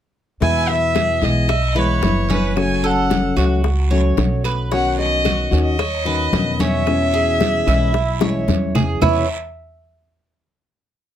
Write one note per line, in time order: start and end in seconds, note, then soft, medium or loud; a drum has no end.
0.40 1.18 E2 medium
0.40 1.21 B2 medium
0.40 1.21 E3 medium
0.40 1.21 G#3 medium
0.40 1.21 B3 medium
0.40 0.94 E4 medium
0.40 1.21 E4 medium
0.40 0.70 G#5 loud
0.40 high bongo medium
0.40 high conga soft
0.40 long guiro medium
0.69 1.25 E5 loud
0.69 high bongo soft
0.69 high conga soft
0.95 1.48 G#4 medium
0.95 high bongo medium
0.95 high conga medium
0.95 short guiro medium
0.95 claves medium
1.21 1.98 B1 medium
1.21 1.48 E3 medium
1.21 1.48 G#3 medium
1.21 1.48 B3 medium
1.21 1.48 E4 medium
1.21 1.80 D#5 loud
1.21 high bongo soft
1.21 high conga soft
1.21 short guiro medium
1.48 1.75 E5 medium
1.48 muted nylon-string guitar stroke medium
1.48 high bongo medium
1.48 high conga soft
1.48 long guiro medium
1.48 claves medium
1.75 2.02 E3 medium
1.75 2.02 G#3 medium
1.75 2.02 B3 medium
1.75 2.01 E4 medium
1.75 2.28 B4 medium
1.75 2.31 C#5 medium
1.75 high conga soft
2.02 3.30 F#1 medium
2.02 2.56 E3 soft
2.02 2.56 G#3 soft
2.02 2.56 B3 soft
2.02 2.56 E4 medium
2.02 high bongo medium
2.02 low bongo medium
2.02 high conga medium
2.02 short guiro medium
2.29 2.82 C#4 medium
2.29 high bongo soft
2.29 high conga medium
2.29 short guiro medium
2.33 2.57 B4 medium
2.56 3.36 C#3 medium
2.56 3.38 F#3 medium
2.56 3.36 A3 medium
2.56 3.37 C#4 medium
2.56 3.36 F#4 medium
2.56 2.87 G#5 medium
2.56 high bongo medium
2.56 high conga soft
2.56 long guiro medium
2.56 claves medium
2.84 3.36 A4 medium
2.84 3.38 F#5 medium
2.84 high bongo soft
2.84 high conga soft
3.10 high bongo medium
3.10 high conga medium
3.10 short guiro medium
3.36 4.13 C#2 medium
3.36 3.63 F#3 medium
3.36 3.63 A3 medium
3.36 3.63 C#4 medium
3.36 3.89 F#4 medium
3.36 3.63 F#4 medium
3.36 high bongo soft
3.36 high conga soft
3.36 short guiro medium
3.36 claves medium
3.64 muted nylon-string guitar stroke medium
3.64 high bongo medium
3.64 high conga soft
3.64 long guiro medium
3.91 4.16 F#3 medium
3.91 4.17 A3 medium
3.91 4.17 C#4 medium
3.91 4.17 F#4 medium
3.91 4.43 C#5 medium
3.91 high conga soft
4.17 5.45 B1 medium
4.17 4.70 F#3 soft
4.17 4.71 A3 soft
4.17 4.71 C#4 soft
4.17 4.71 F#4 soft
4.17 high bongo medium
4.17 low bongo medium
4.17 high conga medium
4.17 short guiro medium
4.44 4.71 B4 medium
4.44 high bongo soft
4.44 high conga soft
4.44 short guiro medium
4.44 claves medium
4.71 5.51 B2 medium
4.71 5.52 D#3 medium
4.71 5.24 C#4 medium
4.71 5.52 C#4 medium
4.71 5.50 F#4 medium
4.71 4.97 F#5 loud
4.71 high bongo medium
4.71 high conga soft
4.71 long guiro medium
4.99 5.49 D#5 loud
4.99 high bongo soft
4.99 high conga soft
5.25 5.77 F#4 medium
5.25 high bongo medium
5.25 high conga medium
5.25 short guiro medium
5.25 claves medium
5.51 6.29 D#2 medium
5.51 5.78 D#3 medium
5.51 5.78 C#4 medium
5.51 5.77 F#4 medium
5.51 high bongo soft
5.51 high conga soft
5.51 short guiro medium
5.63 6.62 D#5 medium
5.78 6.05 C#5 medium
5.78 muted nylon-string guitar stroke medium
5.78 high bongo medium
5.78 high conga soft
5.78 long guiro medium
5.78 claves medium
6.05 6.32 D#3 medium
6.05 6.32 C#4 medium
6.05 6.31 F#4 medium
6.05 6.58 B4 medium
6.05 high conga soft
6.32 7.60 E2 medium
6.32 6.85 B2 medium
6.32 6.86 D#3 soft
6.32 6.86 C#4 soft
6.32 6.87 F#4 soft
6.32 high bongo medium
6.32 low bongo medium
6.32 high conga medium
6.32 short guiro medium
6.59 7.12 C#4 loud
6.59 8.48 E5 loud
6.59 high bongo soft
6.59 high conga medium
6.59 short guiro medium
6.86 7.66 B2 medium
6.86 7.66 E3 medium
6.86 7.67 G#3 medium
6.86 7.66 C#4 medium
6.86 7.65 E4 medium
6.86 high bongo medium
6.86 high conga soft
6.86 long guiro medium
6.86 claves medium
7.14 7.66 G#4 medium
7.14 high bongo soft
7.14 high conga soft
7.41 high bongo medium
7.41 high conga medium
7.41 short guiro medium
7.67 8.44 B1 medium
7.67 7.93 E3 medium
7.67 7.93 G#3 medium
7.67 7.93 C#4 medium
7.67 7.93 E4 medium
7.67 8.20 E4 medium
7.67 high bongo soft
7.67 high conga soft
7.67 short guiro medium
7.67 claves medium
7.94 muted nylon-string guitar stroke medium
7.94 high bongo medium
7.94 high conga soft
7.94 long guiro medium
8.20 8.46 E3 soft
8.20 8.47 G#3 medium
8.20 8.47 C#4 medium
8.20 8.47 E4 medium
8.20 8.74 C#5 medium
8.20 high bongo loud
8.20 high conga medium
8.47 8.95 E2 medium
8.47 9.00 E3 soft
8.47 9.01 G#3 soft
8.47 9.01 C#4 medium
8.47 9.01 E4 soft
8.47 high bongo medium
8.47 high conga medium
8.47 short guiro medium
8.75 9.01 G#4 medium
8.75 low bongo medium
8.75 low conga medium
8.75 short guiro medium
8.75 claves medium
9.01 9.23 E2 medium
9.01 9.27 E2 medium
9.01 9.23 B2 medium
9.01 9.23 E3 medium
9.01 9.24 G#3 medium
9.01 9.24 C#4 medium
9.01 9.27 E4 medium
9.01 9.24 E4 medium
9.01 9.27 B4 medium
9.01 9.27 C#5 medium
9.01 9.26 E5 medium
9.01 low bongo loud
9.01 low conga medium
9.01 long guiro medium
9.01 claves medium